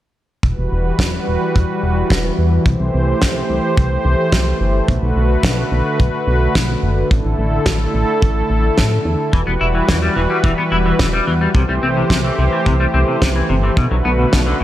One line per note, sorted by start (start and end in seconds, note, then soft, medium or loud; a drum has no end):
0.43 0.54 E1 loud
0.43 4.85 E3 medium
0.43 2.64 G3 medium
0.43 2.64 F#4 medium
0.43 2.64 B4 medium
0.43 kick loud
0.58 0.68 E1 medium
0.72 0.93 E1 medium
0.99 1.20 E1 medium
0.99 kick loud
0.99 snare loud
1.27 1.38 E1 medium
1.56 1.66 E1 medium
1.56 kick loud
1.83 2.04 E1 medium
2.10 2.31 E1 medium
2.10 kick loud
2.10 snare loud
2.38 2.59 E2 medium
2.66 2.76 C2 medium
2.66 7.07 A3 medium
2.66 4.86 G4 medium
2.66 4.86 C5 medium
2.66 kick loud
2.80 2.90 C2 medium
2.94 3.15 C2 medium
3.22 3.43 C2 medium
3.22 kick loud
3.22 snare loud
3.50 3.60 C2 medium
3.77 3.98 C2 medium
3.77 kick loud
4.05 4.15 C2 medium
4.32 4.53 C2 medium
4.32 kick loud
4.32 snare loud
4.61 4.81 G1 medium
4.88 4.99 B1 medium
4.88 9.29 D3 medium
4.88 7.09 F#4 medium
4.88 7.09 B4 medium
4.88 kick loud
5.02 5.13 B1 medium
5.16 5.37 B1 medium
5.43 5.64 B1 medium
5.43 kick loud
5.43 snare loud
5.72 5.82 B1 medium
6.00 6.10 B1 medium
6.00 kick loud
6.27 6.48 B1 medium
6.55 6.76 B1 medium
6.55 kick loud
6.55 snare loud
6.83 7.04 F#1 medium
7.11 7.21 A1 medium
7.11 9.31 A3 medium
7.11 9.31 E4 medium
7.11 9.31 A4 medium
7.11 kick loud
7.25 7.35 A1 medium
7.39 7.59 A1 medium
7.66 7.87 A1 medium
7.66 kick loud
7.66 snare loud
7.94 8.05 A1 medium
8.22 8.43 A1 medium
8.22 kick loud
8.50 8.71 A1 loud
8.78 8.99 A2 medium
8.78 kick loud
8.78 snare loud
9.05 9.16 E2 medium
9.33 9.43 E1 medium
9.33 9.40 E3 medium
9.33 11.53 E3 medium
9.33 11.53 G3 medium
9.33 11.53 F#4 medium
9.33 11.53 B4 medium
9.33 kick loud
9.47 9.57 E1 medium
9.47 9.51 B3 medium
9.61 9.82 E1 medium
9.61 9.65 E4 medium
9.75 9.82 E3 medium
9.88 10.09 E1 medium
9.88 9.95 E3 medium
9.88 kick loud
9.88 snare loud
10.02 10.13 G3 medium
10.16 10.27 E1 medium
10.16 10.20 E3 medium
10.30 10.37 G3 medium
10.44 10.54 E1 medium
10.44 10.51 E3 medium
10.44 kick loud
10.58 10.62 B3 medium
10.72 10.93 E1 medium
10.72 10.76 E4 medium
10.86 10.93 E3 medium
10.99 11.20 E1 medium
10.99 11.07 E3 medium
10.99 kick loud
10.99 snare loud
11.13 11.24 G3 medium
11.27 11.48 E2 medium
11.27 11.32 E3 medium
11.41 11.48 G3 medium
11.55 11.65 C2 loud
11.55 11.62 C3 medium
11.55 13.75 E3 medium
11.55 14.64 A3 medium
11.55 13.75 G4 medium
11.55 13.75 C5 medium
11.55 kick loud
11.69 11.79 C2 medium
11.69 11.73 G3 medium
11.83 12.04 C2 medium
11.83 11.87 C4 medium
11.97 12.04 C3 medium
12.10 12.31 C2 medium
12.10 12.18 C3 medium
12.10 kick medium
12.10 snare loud
12.24 12.35 E3 medium
12.38 12.49 C2 medium
12.38 12.43 C3 medium
12.52 12.59 E3 medium
12.66 12.87 C2 medium
12.66 12.73 C3 medium
12.66 kick medium
12.80 12.84 G3 medium
12.94 13.04 C2 medium
12.94 12.98 C4 medium
13.08 13.15 C3 medium
13.22 13.43 C2 medium
13.22 13.29 C3 medium
13.22 kick medium
13.22 snare loud
13.36 13.46 E3 medium
13.49 13.70 G1 loud
13.49 13.54 C3 loud
13.63 13.70 E3 medium
13.77 13.88 B1 medium
13.77 13.84 B2 medium
13.77 14.64 D3 medium
13.77 14.64 F#4 medium
13.77 14.64 B4 medium
13.77 kick loud
13.91 14.02 B1 medium
13.91 13.95 F#3 medium
14.05 14.26 B1 medium
14.05 14.09 B3 medium
14.19 14.26 B2 medium
14.33 14.54 B1 medium
14.33 14.40 B2 medium
14.33 kick loud
14.33 snare loud
14.46 14.57 D3 medium
14.60 14.64 B2 medium